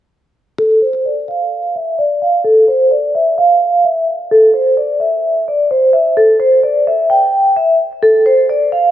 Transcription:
0.58 0.77 A4 loud
0.82 1.00 C5 medium
1.05 1.24 D5 medium
1.28 1.72 F5 medium
1.76 1.94 E5 medium
1.99 2.17 D5 medium
2.22 2.40 F5 medium
2.44 2.63 A4 loud
2.68 2.87 C5 medium
2.91 3.10 D5 medium
3.15 3.33 E5 medium
3.38 3.82 F5 medium
3.84 4.03 E5 medium
4.31 4.50 A4 loud
4.54 4.72 C5 medium
4.77 4.96 D5 medium
5.00 5.44 E5 medium
5.48 5.66 D5 medium
5.71 5.89 C5 medium
5.93 6.12 E5 medium
6.17 6.36 A4 loud
6.40 6.58 C5 medium
6.63 6.82 D5 medium
6.87 7.06 E5 medium
7.10 7.54 G5 medium
7.56 7.75 E5 medium
8.02 8.21 A4 loud
8.26 8.45 C5 medium
8.49 8.68 D5 medium
8.72 8.91 F5 medium

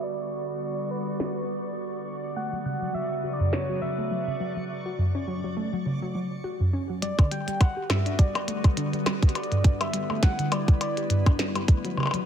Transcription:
0.00 2.32 D3 medium
0.00 2.32 G3 medium
0.00 2.32 B3 medium
0.00 2.32 F#4 medium
0.00 4.69 D5 medium
0.00 0.92 D5 loud
0.00 2.34 D5 medium
0.00 4.69 C#6 medium
0.91 2.07 B4 medium
1.20 snare loud
2.36 4.67 C#3 medium
2.36 4.67 F#3 medium
2.36 2.52 A3 medium
2.36 4.67 B3 medium
2.36 4.67 F#4 medium
2.36 4.67 B4 medium
2.36 2.63 F#5 loud
2.53 2.58 F#3 medium
2.65 2.81 C#3 medium
2.65 2.96 F#5 loud
2.82 2.87 F#3 medium
2.95 3.01 F#3 medium
2.95 3.35 E5 loud
3.24 3.35 F#4 medium
3.33 3.54 D5 loud
3.40 3.49 F#2 loud
3.53 3.64 C#4 medium
3.53 3.83 C#5 loud
3.53 snare loud
3.69 3.78 F#3 medium
3.82 3.89 F#3 medium
3.82 4.69 E5 loud
3.98 4.11 A3 medium
4.11 4.18 F#3 medium
4.27 4.40 C#3 medium
4.40 4.47 F#3 medium
4.57 4.62 F#3 medium
4.86 4.95 F#4 medium
4.99 5.10 F#2 loud
5.15 5.24 C#4 medium
5.28 5.39 F#3 medium
5.44 5.49 F#3 medium
5.57 5.72 A3 medium
5.73 5.78 F#3 medium
5.86 6.01 C#3 medium
6.02 6.08 F#3 medium
6.15 6.22 F#3 medium
6.44 6.56 F#4 medium
6.60 6.69 F#2 loud
6.73 6.85 C#4 medium
6.90 6.99 F#3 medium
7.02 11.64 D3 medium
7.02 11.64 G3 medium
7.02 7.09 G3 medium
7.02 12.26 B3 medium
7.02 9.33 F#4 medium
7.02 12.26 B4 medium
7.02 7.33 D5 loud
7.02 closed hi-hat medium
7.19 7.31 D3 medium
7.19 kick loud
7.19 closed hi-hat soft
7.19 percussion blips medium
7.31 7.38 G3 medium
7.31 7.62 G5 loud
7.31 closed hi-hat medium
7.48 7.53 G3 medium
7.48 closed hi-hat medium
7.60 7.91 F#5 loud
7.60 kick loud
7.60 closed hi-hat medium
7.60 percussion blips medium
7.77 7.86 G4 medium
7.89 8.01 G2 loud
7.89 8.20 E5 loud
7.89 snare loud
7.89 closed hi-hat medium
7.89 percussion blips medium
8.06 8.15 D4 medium
8.06 closed hi-hat medium
8.19 8.30 G3 medium
8.19 9.06 D5 medium
8.19 kick loud
8.19 closed hi-hat medium
8.35 8.41 G3 medium
8.35 closed hi-hat soft
8.35 percussion blips medium
8.48 8.63 A3 medium
8.48 closed hi-hat medium
8.64 8.70 G3 medium
8.64 kick loud
8.64 closed hi-hat medium
8.64 percussion blips medium
8.77 8.93 D3 medium
8.77 closed hi-hat medium
8.93 8.99 G3 medium
8.93 closed hi-hat soft
9.06 9.13 G3 medium
9.06 snare loud
9.06 closed hi-hat medium
9.06 percussion blips medium
9.23 kick loud
9.23 closed hi-hat medium
9.29 closed hi-hat soft
9.35 11.66 E4 medium
9.35 9.47 G4 medium
9.35 9.78 D5 medium
9.35 closed hi-hat medium
9.35 percussion blips medium
9.43 closed hi-hat soft
9.52 9.61 G2 loud
9.52 closed hi-hat soft
9.64 9.76 D4 medium
9.64 kick loud
9.64 closed hi-hat medium
9.81 9.90 G3 medium
9.81 10.24 E5 loud
9.81 closed hi-hat medium
9.81 percussion blips medium
9.93 10.01 G3 medium
9.93 closed hi-hat medium
10.10 10.22 A3 medium
10.10 percussion blips medium
10.23 10.30 G3 medium
10.23 10.54 F#5 loud
10.23 kick loud
10.23 snare loud
10.23 closed hi-hat medium
10.39 10.51 D3 medium
10.39 closed hi-hat medium
10.52 10.59 G3 medium
10.52 10.81 D5 loud
10.52 closed hi-hat medium
10.52 percussion blips medium
10.68 10.74 G3 medium
10.68 kick loud
10.68 closed hi-hat soft
10.81 11.35 D5 medium
10.81 closed hi-hat medium
10.81 percussion blips medium
10.97 11.06 G4 medium
10.97 closed hi-hat medium
11.10 11.22 G2 loud
11.10 closed hi-hat medium
11.26 11.35 D4 medium
11.26 kick loud
11.26 closed hi-hat soft
11.26 percussion blips medium
11.39 11.51 G3 medium
11.39 snare loud
11.39 closed hi-hat medium
11.55 11.61 G3 medium
11.55 closed hi-hat medium
11.55 percussion blips medium
11.68 12.26 C#3 medium
11.68 12.26 F#3 medium
11.68 11.84 A3 medium
11.68 12.26 F#4 medium
11.68 kick loud
11.68 closed hi-hat medium
11.85 11.90 F#3 medium
11.85 closed hi-hat soft
11.97 12.13 C#3 medium
11.97 percussion blips soft
12.00 percussion blips soft
12.03 percussion blips soft
12.06 percussion blips medium
12.07 percussion blips medium
12.11 12.19 F#3 medium
12.11 closed hi-hat medium
12.11 percussion blips medium

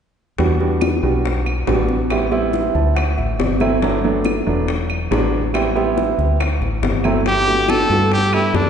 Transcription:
0.38 0.99 E2 medium
0.38 0.54 G3 medium
0.38 0.54 B3 medium
0.38 0.54 D4 medium
0.38 0.54 F#4 medium
0.38 high bongo medium
0.38 high conga soft
0.60 0.90 G3 medium
0.60 0.90 B3 medium
0.60 0.91 D4 medium
0.60 0.91 F#4 medium
0.60 high conga soft
0.81 high bongo medium
0.81 high conga medium
0.81 claves medium
1.03 1.64 B1 medium
1.03 1.48 G3 medium
1.03 1.48 B3 medium
1.03 1.48 D4 medium
1.03 1.49 F#4 medium
1.25 high bongo medium
1.25 high conga soft
1.46 high conga soft
1.46 claves medium
1.67 2.69 A1 medium
1.67 1.98 G3 medium
1.67 1.98 B3 medium
1.67 1.98 D4 medium
1.67 1.98 F#4 loud
1.67 high bongo medium
1.67 low bongo medium
1.67 high conga soft
1.89 high conga medium
2.10 2.26 G3 medium
2.10 2.26 B3 medium
2.10 2.26 C4 medium
2.10 2.26 E4 medium
2.10 high bongo medium
2.10 high conga soft
2.10 claves medium
2.31 2.92 G3 medium
2.31 2.92 B3 medium
2.31 2.92 C4 medium
2.31 2.92 E4 loud
2.31 high bongo soft
2.31 high conga soft
2.53 high bongo medium
2.53 high conga medium
2.75 3.15 D2 medium
2.75 2.95 A5 medium
2.75 high bongo soft
2.75 high conga soft
2.95 3.16 F#5 medium
2.95 high bongo medium
2.95 high conga soft
2.95 claves medium
3.17 3.38 A1 medium
3.17 3.38 E5 medium
3.17 high bongo soft
3.17 high conga soft
3.39 4.41 G1 medium
3.39 3.59 D5 medium
3.39 high bongo medium
3.39 low bongo medium
3.39 high conga medium
3.60 3.76 F#3 medium
3.60 3.76 A3 medium
3.60 3.76 C4 medium
3.60 3.76 E4 medium
3.60 3.81 C5 medium
3.60 high conga medium
3.60 claves medium
3.82 3.98 F#3 medium
3.82 3.97 A3 medium
3.82 3.97 B3 medium
3.82 3.98 D4 medium
3.82 high bongo medium
3.82 high conga soft
4.04 4.34 F#3 medium
4.04 4.34 A3 medium
4.04 4.34 B3 medium
4.04 4.34 D4 medium
4.04 high conga soft
4.25 high bongo medium
4.25 high conga medium
4.25 claves medium
4.47 5.07 E1 medium
4.47 4.68 F#3 medium
4.47 4.68 A3 medium
4.47 4.69 B3 medium
4.47 4.68 D4 medium
4.68 high bongo medium
4.68 high conga soft
4.90 high conga soft
4.90 claves medium
5.11 6.12 A1 medium
5.11 5.41 F#3 medium
5.11 5.41 G#3 medium
5.11 5.41 B3 medium
5.11 5.41 D4 loud
5.11 high bongo medium
5.11 low bongo medium
5.11 high conga soft
5.54 5.69 G3 medium
5.54 5.69 B3 medium
5.54 5.69 C4 medium
5.54 5.69 E4 medium
5.54 high bongo medium
5.54 high conga soft
5.54 claves medium
5.75 6.36 G3 medium
5.75 6.36 B3 medium
5.75 6.36 C4 medium
5.75 6.36 E4 medium
5.75 high bongo soft
5.75 high conga soft
5.97 high bongo medium
5.97 high conga medium
6.18 6.58 D2 medium
6.18 high bongo soft
6.18 high conga soft
6.40 high bongo medium
6.40 high conga soft
6.40 claves medium
6.61 6.81 A1 medium
6.61 high bongo soft
6.61 high conga soft
6.82 7.84 G1 medium
6.82 high bongo medium
6.82 low bongo medium
6.82 high conga medium
7.04 7.20 F#3 medium
7.04 7.20 A3 medium
7.04 7.19 C4 medium
7.04 7.19 E4 medium
7.04 high conga medium
7.04 claves medium
7.26 7.71 G4 loud
7.26 high bongo medium
7.26 high conga soft
7.47 7.62 A3 medium
7.47 7.62 B3 medium
7.47 7.62 D4 medium
7.47 7.62 F#4 medium
7.68 7.84 A3 medium
7.68 7.84 B3 medium
7.68 7.84 D4 medium
7.68 7.84 F#4 medium
7.68 8.12 A4 loud
7.68 high bongo medium
7.68 high conga medium
7.68 claves medium
7.90 8.50 G2 medium
7.90 8.20 A3 medium
7.90 8.20 B3 medium
7.90 8.20 D4 medium
7.90 8.21 F#4 medium
8.12 8.35 G4 medium
8.12 high bongo medium
8.12 high conga soft
8.33 8.70 A3 medium
8.33 8.70 B3 medium
8.33 8.70 D4 medium
8.33 8.57 E4 medium
8.33 8.70 G4 medium
8.33 high conga soft
8.33 claves medium
8.54 8.70 F#2 medium
8.54 8.70 D4 medium
8.54 high bongo medium
8.54 low bongo medium
8.54 high conga soft

